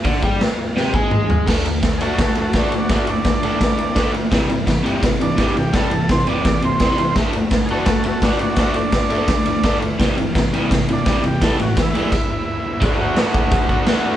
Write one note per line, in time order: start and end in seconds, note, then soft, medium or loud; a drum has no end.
0.04 0.22 D3 loud
0.04 0.23 D4 loud
0.04 kick loud
0.04 open hi-hat medium
0.23 0.40 G3 medium
0.23 0.41 G4 loud
0.23 kick loud
0.41 snare loud
0.41 open hi-hat medium
0.76 0.94 C3 medium
0.76 0.94 C4 medium
0.76 snare medium
0.94 1.46 G#3 loud
0.94 1.47 G#4 loud
0.94 kick loud
1.11 mid tom medium
1.30 floor tom medium
1.47 1.64 D3 medium
1.47 1.65 A3 medium
1.47 1.65 D4 loud
1.47 kick medium
1.47 snare loud
1.47 crash loud
1.66 1.82 D3 medium
1.66 1.82 A3 medium
1.66 ride medium
1.83 2.00 D3 medium
1.83 2.00 A3 medium
1.83 kick loud
1.83 snare loud
1.83 ride medium
1.98 2.18 D3 medium
1.98 2.18 F#4 medium
1.98 2.00 G#4 medium
1.98 ride medium
2.02 2.18 A3 medium
2.02 2.19 D4 loud
2.02 2.19 A4 medium
2.18 2.35 D3 medium
2.18 2.35 A3 medium
2.18 2.38 A4 medium
2.18 kick loud
2.18 snare loud
2.18 ride loud
2.23 2.37 F#4 medium
2.35 2.53 D3 medium
2.35 2.53 A3 medium
2.35 ride medium
2.41 2.56 F#4 medium
2.41 2.56 A4 medium
2.53 2.72 D3 loud
2.53 2.72 A3 medium
2.53 kick loud
2.53 snare medium
2.53 ride medium
2.58 2.73 D4 loud
2.58 2.74 D4 medium
2.58 2.75 F#4 medium
2.72 2.89 D3 medium
2.72 2.89 A3 medium
2.72 ride medium
2.78 2.92 D4 medium
2.78 2.93 F#4 medium
2.89 3.07 D3 medium
2.89 3.07 A3 loud
2.89 kick loud
2.89 snare loud
2.89 ride medium
2.93 3.08 D4 loud
2.93 3.09 D4 medium
2.93 3.10 F#4 medium
3.07 3.25 D3 medium
3.07 3.25 A3 medium
3.07 4.12 D4 medium
3.07 ride medium
3.24 3.42 D3 medium
3.24 3.42 A3 loud
3.24 kick loud
3.24 snare loud
3.24 ride medium
3.43 3.60 D3 medium
3.43 3.60 A3 medium
3.43 3.61 D4 loud
3.43 ride medium
3.61 3.76 D3 medium
3.61 3.77 A3 medium
3.61 kick loud
3.61 snare loud
3.61 ride loud
3.78 3.94 D3 medium
3.78 3.95 A3 medium
3.78 ride medium
3.96 4.13 D3 medium
3.96 4.13 A3 loud
3.96 4.14 D4 loud
3.96 kick loud
3.96 snare loud
3.96 ride medium
4.14 4.30 D3 medium
4.14 4.31 A3 medium
4.14 ride medium
4.32 4.49 C3 loud
4.32 4.49 E3 medium
4.32 4.50 G3 loud
4.32 kick loud
4.32 snare loud
4.32 ride medium
4.50 4.66 C3 medium
4.50 4.66 E3 medium
4.50 ride medium
4.67 4.82 C3 medium
4.67 4.83 E3 medium
4.67 kick medium
4.67 snare loud
4.67 ride medium
4.83 5.01 C3 medium
4.83 5.02 E3 medium
4.83 5.02 G3 loud
4.83 ride medium
5.03 5.19 C3 medium
5.03 5.20 E3 medium
5.03 kick loud
5.03 snare loud
5.03 ride loud
5.20 5.35 C3 medium
5.20 5.36 E3 medium
5.20 5.56 D4 medium
5.20 ride medium
5.36 5.54 C3 medium
5.36 5.55 E3 loud
5.36 5.55 G3 loud
5.36 kick loud
5.36 snare medium
5.36 ride medium
5.56 5.72 C3 medium
5.56 5.72 E3 medium
5.56 5.75 G4 medium
5.56 ride medium
5.73 5.90 C3 loud
5.73 5.91 E3 loud
5.73 5.91 G3 loud
5.73 6.09 A4 medium
5.73 kick loud
5.73 snare loud
5.73 ride medium
5.91 6.08 C3 medium
5.91 6.08 E3 medium
5.91 ride medium
6.09 6.26 C3 medium
6.09 6.27 E3 medium
6.09 6.28 C5 medium
6.09 kick loud
6.09 snare loud
6.09 ride medium
6.27 6.44 C3 medium
6.27 6.45 E3 loud
6.27 6.45 G3 medium
6.27 6.63 D5 medium
6.27 ride medium
6.45 6.61 C3 medium
6.45 6.62 E3 medium
6.45 kick loud
6.45 snare loud
6.45 ride medium
6.62 6.79 C3 medium
6.62 6.79 E3 medium
6.62 7.16 C5 medium
6.62 ride medium
6.80 6.97 C3 medium
6.80 6.98 E3 loud
6.80 6.99 G3 loud
6.80 kick loud
6.80 snare loud
6.80 ride medium
6.98 7.15 C3 medium
6.98 7.15 E3 medium
6.98 ride medium
7.16 7.33 D3 medium
7.16 7.34 A3 loud
7.16 7.34 D4 loud
7.16 kick loud
7.16 snare loud
7.16 ride medium
7.33 7.51 D3 medium
7.33 7.51 A3 medium
7.33 ride medium
7.51 7.68 D3 medium
7.51 7.68 A3 medium
7.51 kick loud
7.51 snare loud
7.51 ride medium
7.66 7.68 G#4 medium
7.66 ride medium
7.70 7.86 D3 medium
7.70 7.87 A3 medium
7.70 7.88 D4 medium
7.70 7.86 F#4 medium
7.70 7.87 A4 medium
7.86 8.03 D3 medium
7.86 8.04 A3 medium
7.86 8.04 F#4 medium
7.86 8.05 A4 medium
7.86 kick loud
7.86 snare loud
7.86 ride loud
8.04 8.21 D3 medium
8.04 8.21 A3 medium
8.04 8.22 F#4 medium
8.04 ride medium
8.08 8.23 A4 medium
8.22 8.39 D3 medium
8.22 8.39 A3 loud
8.22 8.39 D4 medium
8.22 8.39 D4 loud
8.22 8.39 F#4 medium
8.22 kick loud
8.22 snare loud
8.22 ride medium
8.39 8.56 D3 medium
8.39 8.57 A3 medium
8.39 8.57 D4 medium
8.39 8.57 F#4 medium
8.39 ride medium
8.56 8.74 D3 medium
8.56 8.75 A3 medium
8.56 8.75 D4 medium
8.56 8.75 D4 loud
8.56 8.76 F#4 medium
8.56 kick loud
8.56 snare loud
8.56 ride medium
8.74 8.92 D3 medium
8.74 8.91 A3 medium
8.74 9.79 D4 loud
8.74 ride medium
8.92 9.09 D3 medium
8.92 9.09 A3 medium
8.92 kick loud
8.92 snare loud
8.92 ride loud
9.10 9.27 D3 medium
9.10 9.28 A3 medium
9.10 9.28 D4 medium
9.10 ride medium
9.28 9.45 D3 medium
9.28 9.45 A3 medium
9.28 kick loud
9.28 snare loud
9.28 ride loud
9.46 9.62 D3 medium
9.46 9.62 A3 medium
9.46 ride medium
9.63 9.79 D3 medium
9.63 9.80 A3 loud
9.63 9.81 D4 loud
9.63 kick loud
9.63 snare loud
9.63 ride medium
9.80 9.97 D3 medium
9.80 9.97 A3 medium
9.80 ride medium
9.98 10.15 C3 medium
9.98 10.16 E3 medium
9.98 10.16 G3 loud
9.98 kick loud
9.98 snare loud
9.98 ride medium
10.18 10.33 C3 medium
10.18 10.34 E3 medium
10.18 ride medium
10.35 10.51 C3 medium
10.35 10.51 E3 medium
10.35 kick loud
10.35 snare loud
10.35 ride medium
10.54 10.69 C3 medium
10.54 10.70 E3 medium
10.54 10.70 G3 loud
10.54 ride medium
10.71 10.86 C3 medium
10.71 10.87 E3 medium
10.71 kick loud
10.71 snare loud
10.71 ride loud
10.88 11.04 C3 medium
10.88 11.04 E3 medium
10.88 ride medium
10.93 11.24 D4 medium
11.06 11.23 C3 loud
11.06 11.23 E3 medium
11.06 11.24 G3 loud
11.06 kick loud
11.06 snare loud
11.06 ride medium
11.23 11.40 C3 medium
11.23 11.40 E3 medium
11.23 11.42 G4 medium
11.23 ride medium
11.41 11.58 A2 medium
11.41 11.58 E3 loud
11.41 11.59 G3 loud
11.41 11.59 A4 medium
11.41 kick loud
11.41 snare loud
11.41 ride loud
11.59 11.75 A2 medium
11.59 11.75 E3 medium
11.59 11.77 F#4 medium
11.59 ride medium
11.77 11.93 A2 medium
11.77 11.93 E3 medium
11.77 kick loud
11.77 snare loud
11.77 ride medium
11.82 12.82 E4 medium
11.95 12.11 A2 medium
11.95 12.11 E3 medium
11.95 12.12 G3 medium
11.95 ride medium
12.12 kick loud
12.12 crash loud
12.81 13.16 D3 medium
12.81 13.04 A3 loud
12.81 13.02 D4 loud
12.81 kick loud
12.81 crash medium
12.85 12.98 F#4 loud
12.99 13.19 D4 medium
12.99 13.21 F#4 medium
13.04 13.18 A3 medium
13.16 13.86 D3 medium
13.16 13.73 A3 medium
13.16 13.70 D4 medium
13.16 snare loud
13.16 crash medium
13.21 13.68 F#4 loud
13.35 kick loud
13.51 kick loud
13.51 crash medium
13.69 13.89 D4 medium
13.69 13.90 F#4 medium
13.69 kick medium
13.74 13.88 A3 medium
13.86 14.17 D3 loud
13.86 14.07 A3 loud
13.86 14.05 D4 loud
13.86 snare loud
13.86 crash medium
13.92 14.02 F#4 loud
14.03 14.17 A3 medium
14.03 14.17 D4 medium
14.03 14.17 F#4 medium